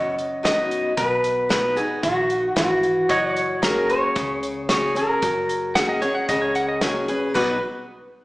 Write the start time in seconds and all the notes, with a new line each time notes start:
Already playing: F#1 F#2 C#5 D#5 F#5
0.19 closed hi-hat
0.43 F#3 B3 D#4 F#4 D#5, snare, closed hi-hat
0.71 closed hi-hat
0.97 B1 B2 B4, kick, closed hi-hat
1.24 closed hi-hat
1.49 F#3 B3 D#4 F#4 B4, snare, closed hi-hat
1.76 D#4 F#4 G#4, closed hi-hat
2.03 A#1 D#3 F#4, kick, closed hi-hat
2.30 closed hi-hat
2.56 G#1 E3 F#4, snare, closed hi-hat
2.83 closed hi-hat
3.09 F#1 F#3 C#5 D#5 F#5, kick, closed hi-hat
3.35 C#5, closed hi-hat
3.62 F#3 A#3 C#4 G#4 A#4, snare, closed hi-hat
3.90 C#5, closed hi-hat
4.16 C#2 C#3, kick, closed hi-hat
4.43 closed hi-hat
4.69 F#3 A#3 C#4 G#4 C#5, snare, closed hi-hat
4.95 C#4 G#4 A#4, closed hi-hat
5.22 F#1 F#3, kick, closed hi-hat
5.49 closed hi-hat
5.75 F#3 A#3 C#4 G#4 F#5, snare, closed hi-hat
5.89 D#5
6.02 C#4 G#4 C#5, closed hi-hat
6.15 F#5
6.29 C#2 C#3 D#5, kick, closed hi-hat
6.42 C#5
6.55 F#5, closed hi-hat
6.69 D#5
6.81 F#3 A#3 C#4 G#4 C#5, snare, closed hi-hat
7.08 C#4 G#4 B4, closed hi-hat
7.34 B1 B2 F#3 B3 D#4 F#4 B4, kick, crash